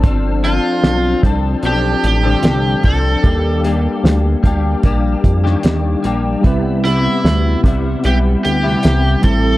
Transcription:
<<
  \new Staff \with { instrumentName = "Electric slide guitar" } { \time 4/4 \key c \major \tempo 4 = 75 r8 f'4 r8 g'8 g'4 a'8~ | a'8 r2. r8 | r8 e'4 r8 g'8 g'4 a'8 | }
  \new Staff \with { instrumentName = "Tine electric piano" } { \time 4/4 \key c \major r1 | r1 | <g c' e' b'>2.~ <g c' e' b'>8 <g c' e' a'>8 | }
  \new Staff \with { instrumentName = "Clean electric guitar" } { \time 4/4 \key c \major <f c' d' a'>8 <f c' d' a'>4 <f c' d' a'>8 <f c' d' a'>8. <g, d f c' d' a'>8. <f c' d' a'>8 | <g bes d' g'>8 <g bes d' g'>4 <g bes d' g'>8 <g bes d' g'>8. <ees g bes d' g'>8. <g bes d' g'>8 | <c g b e'>8 <c g b e'>4 <c g b e'>8 <g b e'>8. <c g b e'>8. <e g c' e'>8 | }
  \new Staff \with { instrumentName = "Analog synth bass" } { \clef bass \time 4/4 \key c \major g,,4 b,,8 c,8 b,,8 a,,8 c,8 c,8 | ees,4 d,8 d,8 bes,,8 f,8 ees,8 bes,,8 | c,4 d,8 c,8 b,,8 d,8 c,8 a,,8 | }
  \new DrumStaff \with { instrumentName = "Drums" } \drummode { \time 4/4 <hh bd>8 hh8 <hh sn>8 <hh bd>8 hh8 hh8 <hh sn>8 <hho bd>8 | <hh bd>8 hh8 <hh sn>8 <hh bd>8 <hh bd>8 <hh bd>16 sn16 <hh sn>8 hh8 | <hh bd>8 hh8 <hh sn>8 <hh bd>8 hh8 hh8 <hh sn>8 <hh bd>8 | }
>>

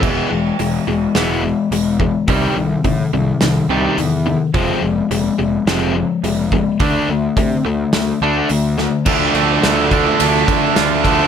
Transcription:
<<
  \new Staff \with { instrumentName = "Distorted electric guitar" } { \time 4/4 \key d \dorian \tempo 4 = 106 r1 | r1 | r1 | r1 |
<d a d'>1 | }
  \new Staff \with { instrumentName = "Overdriven electric guitar" } { \clef bass \time 4/4 \key d \dorian <e gis b>8 <e gis>8 <e gis>8 <e gis>8 <e gis b>8 <e gis>8 <e gis>8 <e gis>8 | <c ees g>8 <c ees>8 <c ees>8 <c ees>8 <c ees>8 <c ees g>8 <c ees>8 <c ees>8 | <f aes c'>8 <f aes>8 <f aes>8 <f aes>8 <f aes c'>8 <f aes>8 <f aes>8 <f aes>8 | <d a d'>8 <d a>8 <d a>8 <d a>8 <d a>8 <d a d'>8 <d a>8 <d a>8 |
<d f a d'>2.~ <d f a d'>8 <d f a d'>8 | }
  \new Staff \with { instrumentName = "Clean electric guitar" } { \clef bass \time 4/4 \key d \dorian <e, b, e>8 <e, b,>8 <e, b,>8 <e, b,>8 <e, b, e>8 <e, b,>8 <e, b,>8 <e, b,>8 | <c ees g>8 <c ees>8 <c ees>8 <c ees>8 <c ees>8 <c ees g>8 <c ees>8 <c ees>8 | <f, c f>8 <f, c>8 <f, c>8 <f, c>8 <f, c f>8 f,8 <f, c>8 <f, c>8 | <d a d'>8 <d a>8 <d a>8 <d a>8 <d a>8 <d a d'>8 <d a>8 <d a>8 |
d8 a8 d8 d'8 a8 d'8 f'8 a8 | }
  \new Staff \with { instrumentName = "Picked electric bass" } { \clef bass \time 4/4 \key d \dorian e,,8 e,,8 e,,8 e,,8 e,,4 e,,4 | c,8 c,8 a,8 c,8 c,8 c,8 e,4 | f,,8 f,,8 f,,8 f,,8 f,,4 f,,4 | d,8 d,8 c8 d,8 d,8 d,8 d,4 |
d,8 d,8 d,4 d,8 d8 d,4 | }
  \new DrumStaff \with { instrumentName = "Drums" } \drummode { \time 4/4 <cymc bd>4 hho4 <hho sn>4 hho8 bd8 | <hho bd>4 <hho bd>4 <hho sn>4 hho4 | <hho bd>4 hho4 <hho sn>4 hho8 bd8 | <hho bd>4 <hho bd>4 <hho sn>4 hho8 sn8 |
<cymc bd>8 cymr8 <cymr sn>8 <bd cymr>8 cymr8 <bd cymr>8 <cymr sn>8 <bd cymr>8 | }
>>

